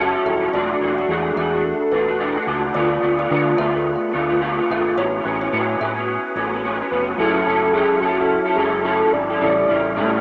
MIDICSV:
0, 0, Header, 1, 6, 480
1, 0, Start_track
1, 0, Key_signature, 3, "major"
1, 0, Tempo, 555042
1, 465, Time_signature, 4, 2, 24, 8
1, 8828, End_track
2, 0, Start_track
2, 0, Title_t, "Soft synth lead"
2, 0, Program_c, 0, 80
2, 7, Note_on_c, 0, 66, 90
2, 945, Note_off_c, 0, 66, 0
2, 950, Note_on_c, 0, 68, 97
2, 1426, Note_on_c, 0, 69, 86
2, 1439, Note_off_c, 0, 68, 0
2, 2146, Note_off_c, 0, 69, 0
2, 5979, Note_on_c, 0, 71, 82
2, 6089, Note_off_c, 0, 71, 0
2, 6222, Note_on_c, 0, 69, 84
2, 6448, Note_off_c, 0, 69, 0
2, 6461, Note_on_c, 0, 69, 91
2, 6687, Note_on_c, 0, 68, 89
2, 6700, Note_off_c, 0, 69, 0
2, 6923, Note_off_c, 0, 68, 0
2, 6928, Note_on_c, 0, 66, 91
2, 7403, Note_on_c, 0, 68, 91
2, 7416, Note_off_c, 0, 66, 0
2, 7639, Note_on_c, 0, 69, 99
2, 7652, Note_off_c, 0, 68, 0
2, 7896, Note_on_c, 0, 74, 116
2, 7909, Note_off_c, 0, 69, 0
2, 8828, Note_off_c, 0, 74, 0
2, 8828, End_track
3, 0, Start_track
3, 0, Title_t, "Kalimba"
3, 0, Program_c, 1, 108
3, 226, Note_on_c, 1, 76, 67
3, 232, Note_on_c, 1, 68, 54
3, 363, Note_off_c, 1, 76, 0
3, 366, Note_off_c, 1, 68, 0
3, 462, Note_on_c, 1, 74, 80
3, 469, Note_on_c, 1, 66, 62
3, 692, Note_off_c, 1, 74, 0
3, 696, Note_off_c, 1, 66, 0
3, 849, Note_on_c, 1, 74, 64
3, 853, Note_on_c, 1, 66, 47
3, 1078, Note_off_c, 1, 74, 0
3, 1080, Note_off_c, 1, 66, 0
3, 1186, Note_on_c, 1, 76, 66
3, 1192, Note_on_c, 1, 68, 51
3, 1323, Note_off_c, 1, 76, 0
3, 1326, Note_off_c, 1, 68, 0
3, 1656, Note_on_c, 1, 71, 63
3, 1667, Note_on_c, 1, 62, 49
3, 2022, Note_off_c, 1, 71, 0
3, 2028, Note_off_c, 1, 62, 0
3, 2374, Note_on_c, 1, 74, 84
3, 2379, Note_on_c, 1, 65, 74
3, 2608, Note_off_c, 1, 74, 0
3, 2610, Note_off_c, 1, 65, 0
3, 2760, Note_on_c, 1, 74, 70
3, 2766, Note_on_c, 1, 65, 56
3, 2993, Note_off_c, 1, 74, 0
3, 2996, Note_off_c, 1, 65, 0
3, 3099, Note_on_c, 1, 76, 71
3, 3102, Note_on_c, 1, 68, 52
3, 3239, Note_off_c, 1, 76, 0
3, 3241, Note_off_c, 1, 68, 0
3, 4076, Note_on_c, 1, 76, 74
3, 4083, Note_on_c, 1, 68, 57
3, 4209, Note_off_c, 1, 76, 0
3, 4212, Note_off_c, 1, 68, 0
3, 4304, Note_on_c, 1, 73, 86
3, 4306, Note_on_c, 1, 64, 66
3, 4533, Note_off_c, 1, 73, 0
3, 4535, Note_off_c, 1, 64, 0
3, 4683, Note_on_c, 1, 73, 67
3, 4689, Note_on_c, 1, 64, 53
3, 4915, Note_off_c, 1, 73, 0
3, 4918, Note_off_c, 1, 64, 0
3, 5025, Note_on_c, 1, 76, 65
3, 5029, Note_on_c, 1, 68, 50
3, 5163, Note_off_c, 1, 76, 0
3, 5164, Note_off_c, 1, 68, 0
3, 5504, Note_on_c, 1, 69, 63
3, 5507, Note_on_c, 1, 61, 46
3, 5866, Note_off_c, 1, 69, 0
3, 5868, Note_off_c, 1, 61, 0
3, 8828, End_track
4, 0, Start_track
4, 0, Title_t, "Synth keys"
4, 0, Program_c, 2, 88
4, 6203, Note_on_c, 2, 54, 64
4, 6218, Note_on_c, 2, 61, 53
4, 6230, Note_on_c, 2, 64, 52
4, 6248, Note_on_c, 2, 68, 56
4, 6301, Note_on_c, 2, 69, 63
4, 6305, Note_off_c, 2, 68, 0
4, 6375, Control_c, 2, 64, 127
4, 8100, Note_off_c, 2, 54, 0
4, 8108, Note_off_c, 2, 61, 0
4, 8113, Note_off_c, 2, 64, 0
4, 8119, Note_on_c, 2, 55, 62
4, 8132, Note_on_c, 2, 49, 56
4, 8147, Note_on_c, 2, 64, 59
4, 8149, Note_off_c, 2, 69, 0
4, 8157, Control_c, 2, 64, 0
4, 8158, Note_on_c, 2, 69, 69
4, 8330, Control_c, 2, 64, 127
4, 8828, Note_off_c, 2, 49, 0
4, 8828, Note_off_c, 2, 55, 0
4, 8828, Note_off_c, 2, 64, 0
4, 8828, Note_off_c, 2, 69, 0
4, 8828, End_track
5, 0, Start_track
5, 0, Title_t, "Clean electric guitar"
5, 0, Program_c, 3, 27
5, 0, Note_on_c, 3, 54, 64
5, 0, Note_on_c, 3, 61, 64
5, 0, Note_on_c, 3, 64, 72
5, 1, Note_on_c, 3, 69, 74
5, 119, Note_off_c, 3, 69, 0
5, 128, Note_off_c, 3, 54, 0
5, 129, Note_on_c, 3, 69, 47
5, 130, Note_off_c, 3, 61, 0
5, 134, Note_off_c, 3, 64, 0
5, 144, Note_on_c, 3, 64, 45
5, 157, Note_on_c, 3, 61, 42
5, 225, Note_off_c, 3, 69, 0
5, 227, Note_off_c, 3, 61, 0
5, 230, Note_on_c, 3, 54, 56
5, 233, Note_off_c, 3, 64, 0
5, 237, Note_on_c, 3, 61, 58
5, 244, Note_on_c, 3, 64, 53
5, 253, Note_on_c, 3, 69, 59
5, 465, Note_on_c, 3, 52, 70
5, 468, Note_off_c, 3, 54, 0
5, 471, Note_off_c, 3, 61, 0
5, 472, Note_on_c, 3, 57, 71
5, 474, Note_on_c, 3, 62, 70
5, 475, Note_off_c, 3, 64, 0
5, 479, Note_off_c, 3, 69, 0
5, 482, Note_on_c, 3, 66, 76
5, 598, Note_off_c, 3, 66, 0
5, 608, Note_on_c, 3, 66, 48
5, 610, Note_off_c, 3, 52, 0
5, 613, Note_off_c, 3, 57, 0
5, 614, Note_off_c, 3, 62, 0
5, 624, Note_on_c, 3, 62, 46
5, 633, Note_on_c, 3, 57, 42
5, 697, Note_on_c, 3, 52, 58
5, 698, Note_off_c, 3, 57, 0
5, 705, Note_off_c, 3, 62, 0
5, 705, Note_off_c, 3, 66, 0
5, 708, Note_on_c, 3, 57, 59
5, 716, Note_on_c, 3, 62, 61
5, 721, Note_on_c, 3, 66, 64
5, 830, Note_off_c, 3, 66, 0
5, 841, Note_on_c, 3, 66, 50
5, 845, Note_off_c, 3, 52, 0
5, 845, Note_off_c, 3, 62, 0
5, 851, Note_off_c, 3, 57, 0
5, 855, Note_on_c, 3, 62, 44
5, 868, Note_on_c, 3, 57, 42
5, 939, Note_off_c, 3, 57, 0
5, 939, Note_on_c, 3, 52, 67
5, 941, Note_off_c, 3, 66, 0
5, 943, Note_off_c, 3, 62, 0
5, 949, Note_on_c, 3, 57, 66
5, 953, Note_on_c, 3, 62, 70
5, 958, Note_on_c, 3, 66, 75
5, 1168, Note_off_c, 3, 52, 0
5, 1174, Note_off_c, 3, 57, 0
5, 1179, Note_on_c, 3, 52, 50
5, 1185, Note_on_c, 3, 57, 50
5, 1190, Note_off_c, 3, 62, 0
5, 1192, Note_off_c, 3, 66, 0
5, 1199, Note_on_c, 3, 62, 52
5, 1207, Note_on_c, 3, 66, 57
5, 1313, Note_off_c, 3, 66, 0
5, 1324, Note_on_c, 3, 66, 44
5, 1326, Note_off_c, 3, 52, 0
5, 1328, Note_off_c, 3, 62, 0
5, 1329, Note_off_c, 3, 57, 0
5, 1338, Note_on_c, 3, 62, 43
5, 1347, Note_on_c, 3, 57, 35
5, 1657, Note_on_c, 3, 52, 59
5, 1661, Note_off_c, 3, 57, 0
5, 1663, Note_off_c, 3, 66, 0
5, 1666, Note_off_c, 3, 62, 0
5, 1672, Note_on_c, 3, 57, 57
5, 1676, Note_on_c, 3, 62, 59
5, 1684, Note_on_c, 3, 66, 58
5, 1787, Note_off_c, 3, 66, 0
5, 1798, Note_on_c, 3, 66, 49
5, 1806, Note_off_c, 3, 52, 0
5, 1806, Note_off_c, 3, 62, 0
5, 1811, Note_off_c, 3, 57, 0
5, 1816, Note_on_c, 3, 62, 43
5, 1821, Note_on_c, 3, 57, 40
5, 1890, Note_off_c, 3, 57, 0
5, 1893, Note_on_c, 3, 52, 64
5, 1896, Note_off_c, 3, 62, 0
5, 1898, Note_off_c, 3, 66, 0
5, 1901, Note_on_c, 3, 57, 62
5, 1907, Note_on_c, 3, 62, 78
5, 1908, Note_on_c, 3, 66, 75
5, 2023, Note_off_c, 3, 66, 0
5, 2033, Note_on_c, 3, 66, 49
5, 2039, Note_off_c, 3, 62, 0
5, 2044, Note_off_c, 3, 52, 0
5, 2047, Note_off_c, 3, 57, 0
5, 2050, Note_on_c, 3, 62, 48
5, 2063, Note_on_c, 3, 57, 41
5, 2125, Note_on_c, 3, 52, 55
5, 2127, Note_off_c, 3, 57, 0
5, 2130, Note_off_c, 3, 62, 0
5, 2137, Note_on_c, 3, 57, 61
5, 2138, Note_off_c, 3, 66, 0
5, 2141, Note_on_c, 3, 62, 67
5, 2149, Note_on_c, 3, 66, 68
5, 2369, Note_off_c, 3, 52, 0
5, 2370, Note_off_c, 3, 57, 0
5, 2372, Note_on_c, 3, 50, 77
5, 2380, Note_on_c, 3, 57, 83
5, 2382, Note_off_c, 3, 62, 0
5, 2385, Note_on_c, 3, 59, 89
5, 2387, Note_off_c, 3, 66, 0
5, 2390, Note_on_c, 3, 65, 83
5, 2507, Note_off_c, 3, 65, 0
5, 2518, Note_on_c, 3, 65, 49
5, 2523, Note_off_c, 3, 50, 0
5, 2524, Note_off_c, 3, 59, 0
5, 2527, Note_off_c, 3, 57, 0
5, 2534, Note_on_c, 3, 59, 42
5, 2546, Note_on_c, 3, 57, 38
5, 2604, Note_off_c, 3, 57, 0
5, 2606, Note_on_c, 3, 50, 63
5, 2614, Note_off_c, 3, 59, 0
5, 2614, Note_on_c, 3, 57, 56
5, 2616, Note_off_c, 3, 65, 0
5, 2624, Note_on_c, 3, 59, 65
5, 2626, Note_on_c, 3, 65, 62
5, 2744, Note_off_c, 3, 65, 0
5, 2754, Note_on_c, 3, 65, 56
5, 2757, Note_off_c, 3, 59, 0
5, 2760, Note_off_c, 3, 50, 0
5, 2764, Note_off_c, 3, 57, 0
5, 2768, Note_on_c, 3, 59, 53
5, 2780, Note_on_c, 3, 57, 43
5, 2844, Note_off_c, 3, 57, 0
5, 2848, Note_off_c, 3, 59, 0
5, 2848, Note_on_c, 3, 50, 75
5, 2853, Note_off_c, 3, 65, 0
5, 2854, Note_on_c, 3, 57, 72
5, 2858, Note_on_c, 3, 59, 81
5, 2863, Note_on_c, 3, 65, 87
5, 3072, Note_off_c, 3, 50, 0
5, 3080, Note_off_c, 3, 57, 0
5, 3082, Note_on_c, 3, 50, 59
5, 3090, Note_off_c, 3, 59, 0
5, 3090, Note_on_c, 3, 57, 57
5, 3097, Note_off_c, 3, 65, 0
5, 3100, Note_on_c, 3, 59, 64
5, 3107, Note_on_c, 3, 65, 68
5, 3208, Note_off_c, 3, 65, 0
5, 3218, Note_on_c, 3, 65, 45
5, 3225, Note_off_c, 3, 59, 0
5, 3233, Note_off_c, 3, 57, 0
5, 3235, Note_on_c, 3, 59, 46
5, 3239, Note_off_c, 3, 50, 0
5, 3243, Note_on_c, 3, 57, 46
5, 3558, Note_on_c, 3, 50, 59
5, 3562, Note_off_c, 3, 57, 0
5, 3566, Note_off_c, 3, 59, 0
5, 3570, Note_off_c, 3, 65, 0
5, 3573, Note_on_c, 3, 57, 66
5, 3576, Note_on_c, 3, 59, 66
5, 3582, Note_on_c, 3, 65, 67
5, 3691, Note_off_c, 3, 65, 0
5, 3701, Note_on_c, 3, 65, 54
5, 3704, Note_off_c, 3, 59, 0
5, 3715, Note_on_c, 3, 59, 52
5, 3716, Note_off_c, 3, 50, 0
5, 3717, Note_off_c, 3, 57, 0
5, 3727, Note_on_c, 3, 57, 44
5, 3800, Note_off_c, 3, 57, 0
5, 3802, Note_on_c, 3, 50, 78
5, 3807, Note_off_c, 3, 59, 0
5, 3811, Note_on_c, 3, 57, 76
5, 3812, Note_off_c, 3, 65, 0
5, 3817, Note_on_c, 3, 59, 81
5, 3821, Note_on_c, 3, 65, 86
5, 3944, Note_off_c, 3, 65, 0
5, 3955, Note_on_c, 3, 65, 51
5, 3959, Note_off_c, 3, 50, 0
5, 3959, Note_off_c, 3, 59, 0
5, 3963, Note_off_c, 3, 57, 0
5, 3969, Note_on_c, 3, 59, 47
5, 3975, Note_on_c, 3, 57, 46
5, 4047, Note_on_c, 3, 50, 55
5, 4048, Note_off_c, 3, 57, 0
5, 4055, Note_off_c, 3, 59, 0
5, 4058, Note_on_c, 3, 57, 61
5, 4059, Note_off_c, 3, 65, 0
5, 4066, Note_on_c, 3, 59, 59
5, 4074, Note_on_c, 3, 65, 73
5, 4294, Note_off_c, 3, 59, 0
5, 4297, Note_off_c, 3, 50, 0
5, 4297, Note_on_c, 3, 45, 83
5, 4298, Note_off_c, 3, 57, 0
5, 4301, Note_on_c, 3, 54, 80
5, 4305, Note_on_c, 3, 59, 76
5, 4308, Note_off_c, 3, 65, 0
5, 4311, Note_on_c, 3, 61, 74
5, 4516, Note_off_c, 3, 45, 0
5, 4525, Note_off_c, 3, 54, 0
5, 4526, Note_on_c, 3, 45, 60
5, 4530, Note_off_c, 3, 59, 0
5, 4535, Note_on_c, 3, 54, 65
5, 4538, Note_off_c, 3, 61, 0
5, 4540, Note_on_c, 3, 59, 68
5, 4548, Note_on_c, 3, 61, 68
5, 4662, Note_off_c, 3, 61, 0
5, 4673, Note_on_c, 3, 61, 54
5, 4677, Note_off_c, 3, 59, 0
5, 4680, Note_off_c, 3, 45, 0
5, 4682, Note_off_c, 3, 54, 0
5, 4688, Note_on_c, 3, 59, 47
5, 4693, Note_on_c, 3, 54, 42
5, 4767, Note_off_c, 3, 54, 0
5, 4770, Note_on_c, 3, 45, 78
5, 4771, Note_off_c, 3, 59, 0
5, 4777, Note_on_c, 3, 54, 84
5, 4778, Note_off_c, 3, 61, 0
5, 4781, Note_on_c, 3, 59, 73
5, 4787, Note_on_c, 3, 61, 78
5, 5003, Note_off_c, 3, 45, 0
5, 5009, Note_off_c, 3, 54, 0
5, 5013, Note_on_c, 3, 45, 56
5, 5019, Note_off_c, 3, 59, 0
5, 5020, Note_on_c, 3, 54, 54
5, 5027, Note_off_c, 3, 61, 0
5, 5029, Note_on_c, 3, 59, 61
5, 5037, Note_on_c, 3, 61, 69
5, 5137, Note_off_c, 3, 61, 0
5, 5148, Note_on_c, 3, 61, 49
5, 5154, Note_off_c, 3, 59, 0
5, 5164, Note_off_c, 3, 45, 0
5, 5164, Note_on_c, 3, 59, 45
5, 5167, Note_off_c, 3, 54, 0
5, 5176, Note_on_c, 3, 54, 42
5, 5489, Note_off_c, 3, 54, 0
5, 5491, Note_on_c, 3, 45, 59
5, 5495, Note_off_c, 3, 61, 0
5, 5499, Note_off_c, 3, 59, 0
5, 5500, Note_on_c, 3, 54, 60
5, 5509, Note_on_c, 3, 59, 65
5, 5515, Note_on_c, 3, 61, 64
5, 5635, Note_off_c, 3, 61, 0
5, 5643, Note_off_c, 3, 45, 0
5, 5645, Note_on_c, 3, 61, 49
5, 5647, Note_off_c, 3, 54, 0
5, 5647, Note_off_c, 3, 59, 0
5, 5657, Note_on_c, 3, 59, 52
5, 5665, Note_on_c, 3, 54, 43
5, 5730, Note_off_c, 3, 54, 0
5, 5732, Note_off_c, 3, 59, 0
5, 5734, Note_on_c, 3, 45, 74
5, 5741, Note_off_c, 3, 61, 0
5, 5741, Note_on_c, 3, 54, 70
5, 5743, Note_on_c, 3, 59, 73
5, 5751, Note_on_c, 3, 61, 78
5, 5869, Note_off_c, 3, 61, 0
5, 5880, Note_on_c, 3, 61, 50
5, 5884, Note_off_c, 3, 45, 0
5, 5885, Note_off_c, 3, 59, 0
5, 5888, Note_off_c, 3, 54, 0
5, 5895, Note_on_c, 3, 59, 46
5, 5902, Note_on_c, 3, 54, 44
5, 5964, Note_on_c, 3, 45, 61
5, 5965, Note_off_c, 3, 54, 0
5, 5972, Note_off_c, 3, 59, 0
5, 5976, Note_on_c, 3, 54, 61
5, 5979, Note_off_c, 3, 61, 0
5, 5982, Note_on_c, 3, 59, 62
5, 5990, Note_on_c, 3, 61, 62
5, 6199, Note_off_c, 3, 54, 0
5, 6206, Note_off_c, 3, 61, 0
5, 6209, Note_on_c, 3, 54, 66
5, 6213, Note_off_c, 3, 59, 0
5, 6215, Note_off_c, 3, 45, 0
5, 6217, Note_on_c, 3, 61, 82
5, 6221, Note_on_c, 3, 64, 78
5, 6228, Note_on_c, 3, 69, 79
5, 6433, Note_off_c, 3, 54, 0
5, 6442, Note_off_c, 3, 61, 0
5, 6443, Note_on_c, 3, 54, 54
5, 6450, Note_off_c, 3, 64, 0
5, 6452, Note_on_c, 3, 61, 62
5, 6459, Note_off_c, 3, 69, 0
5, 6460, Note_on_c, 3, 64, 61
5, 6469, Note_on_c, 3, 69, 62
5, 6674, Note_off_c, 3, 54, 0
5, 6685, Note_off_c, 3, 61, 0
5, 6685, Note_off_c, 3, 64, 0
5, 6685, Note_on_c, 3, 54, 74
5, 6690, Note_off_c, 3, 69, 0
5, 6696, Note_on_c, 3, 61, 70
5, 6696, Note_on_c, 3, 64, 75
5, 6701, Note_on_c, 3, 69, 69
5, 6918, Note_off_c, 3, 54, 0
5, 6929, Note_on_c, 3, 54, 57
5, 6931, Note_off_c, 3, 61, 0
5, 6941, Note_off_c, 3, 64, 0
5, 6941, Note_on_c, 3, 61, 55
5, 6944, Note_off_c, 3, 69, 0
5, 6950, Note_on_c, 3, 64, 54
5, 6959, Note_on_c, 3, 69, 59
5, 7069, Note_off_c, 3, 69, 0
5, 7080, Note_on_c, 3, 69, 51
5, 7082, Note_off_c, 3, 54, 0
5, 7083, Note_off_c, 3, 64, 0
5, 7088, Note_off_c, 3, 61, 0
5, 7093, Note_on_c, 3, 64, 44
5, 7105, Note_on_c, 3, 61, 43
5, 7301, Note_off_c, 3, 69, 0
5, 7312, Note_on_c, 3, 69, 54
5, 7317, Note_off_c, 3, 64, 0
5, 7325, Note_off_c, 3, 61, 0
5, 7327, Note_on_c, 3, 64, 50
5, 7335, Note_on_c, 3, 61, 40
5, 7404, Note_on_c, 3, 54, 64
5, 7407, Note_off_c, 3, 61, 0
5, 7414, Note_off_c, 3, 64, 0
5, 7417, Note_off_c, 3, 69, 0
5, 7417, Note_on_c, 3, 61, 61
5, 7424, Note_on_c, 3, 64, 59
5, 7430, Note_on_c, 3, 69, 63
5, 7633, Note_off_c, 3, 54, 0
5, 7639, Note_off_c, 3, 61, 0
5, 7643, Note_on_c, 3, 54, 64
5, 7646, Note_off_c, 3, 64, 0
5, 7647, Note_off_c, 3, 69, 0
5, 7649, Note_on_c, 3, 61, 75
5, 7656, Note_on_c, 3, 64, 70
5, 7658, Note_on_c, 3, 69, 79
5, 8027, Note_off_c, 3, 69, 0
5, 8037, Note_on_c, 3, 69, 47
5, 8039, Note_off_c, 3, 54, 0
5, 8042, Note_off_c, 3, 61, 0
5, 8045, Note_off_c, 3, 64, 0
5, 8055, Note_on_c, 3, 64, 46
5, 8062, Note_on_c, 3, 61, 42
5, 8129, Note_off_c, 3, 61, 0
5, 8134, Note_on_c, 3, 45, 71
5, 8137, Note_off_c, 3, 64, 0
5, 8138, Note_on_c, 3, 55, 74
5, 8139, Note_on_c, 3, 61, 78
5, 8140, Note_off_c, 3, 69, 0
5, 8147, Note_on_c, 3, 64, 79
5, 8363, Note_off_c, 3, 45, 0
5, 8370, Note_off_c, 3, 55, 0
5, 8373, Note_on_c, 3, 45, 62
5, 8377, Note_off_c, 3, 61, 0
5, 8381, Note_on_c, 3, 55, 61
5, 8387, Note_off_c, 3, 64, 0
5, 8388, Note_on_c, 3, 61, 64
5, 8396, Note_on_c, 3, 64, 59
5, 8591, Note_off_c, 3, 45, 0
5, 8600, Note_off_c, 3, 55, 0
5, 8601, Note_on_c, 3, 45, 84
5, 8605, Note_off_c, 3, 61, 0
5, 8609, Note_off_c, 3, 64, 0
5, 8610, Note_on_c, 3, 55, 91
5, 8615, Note_on_c, 3, 61, 81
5, 8619, Note_on_c, 3, 64, 92
5, 8828, Note_off_c, 3, 45, 0
5, 8828, Note_off_c, 3, 55, 0
5, 8828, Note_off_c, 3, 61, 0
5, 8828, Note_off_c, 3, 64, 0
5, 8828, End_track
6, 0, Start_track
6, 0, Title_t, "Fingered electric bass"
6, 0, Program_c, 4, 33
6, 0, Note_on_c, 4, 30, 85
6, 125, Note_off_c, 4, 30, 0
6, 217, Note_on_c, 4, 27, 74
6, 413, Note_off_c, 4, 27, 0
6, 458, Note_on_c, 4, 28, 78
6, 653, Note_off_c, 4, 28, 0
6, 697, Note_on_c, 4, 28, 78
6, 893, Note_off_c, 4, 28, 0
6, 935, Note_on_c, 4, 40, 84
6, 1131, Note_off_c, 4, 40, 0
6, 1179, Note_on_c, 4, 40, 65
6, 1489, Note_off_c, 4, 40, 0
6, 1661, Note_on_c, 4, 28, 82
6, 2047, Note_off_c, 4, 28, 0
6, 2134, Note_on_c, 4, 37, 72
6, 2331, Note_off_c, 4, 37, 0
6, 2380, Note_on_c, 4, 38, 92
6, 2574, Note_off_c, 4, 38, 0
6, 2621, Note_on_c, 4, 38, 71
6, 2815, Note_off_c, 4, 38, 0
6, 2860, Note_on_c, 4, 50, 94
6, 3055, Note_off_c, 4, 50, 0
6, 3106, Note_on_c, 4, 38, 78
6, 3413, Note_off_c, 4, 38, 0
6, 3584, Note_on_c, 4, 38, 78
6, 3969, Note_off_c, 4, 38, 0
6, 4064, Note_on_c, 4, 32, 79
6, 4257, Note_off_c, 4, 32, 0
6, 4297, Note_on_c, 4, 33, 81
6, 4493, Note_off_c, 4, 33, 0
6, 4541, Note_on_c, 4, 33, 84
6, 4735, Note_off_c, 4, 33, 0
6, 4781, Note_on_c, 4, 45, 88
6, 4975, Note_off_c, 4, 45, 0
6, 5021, Note_on_c, 4, 45, 72
6, 5331, Note_off_c, 4, 45, 0
6, 5495, Note_on_c, 4, 33, 79
6, 5883, Note_off_c, 4, 33, 0
6, 5981, Note_on_c, 4, 29, 75
6, 6175, Note_off_c, 4, 29, 0
6, 6217, Note_on_c, 4, 30, 90
6, 6413, Note_off_c, 4, 30, 0
6, 6458, Note_on_c, 4, 30, 81
6, 6769, Note_off_c, 4, 30, 0
6, 6934, Note_on_c, 4, 30, 90
6, 7246, Note_off_c, 4, 30, 0
6, 7418, Note_on_c, 4, 30, 81
6, 7805, Note_off_c, 4, 30, 0
6, 7900, Note_on_c, 4, 32, 77
6, 8094, Note_off_c, 4, 32, 0
6, 8140, Note_on_c, 4, 33, 83
6, 8335, Note_off_c, 4, 33, 0
6, 8387, Note_on_c, 4, 33, 82
6, 8623, Note_on_c, 4, 45, 93
6, 8636, Note_off_c, 4, 33, 0
6, 8816, Note_off_c, 4, 45, 0
6, 8828, End_track
0, 0, End_of_file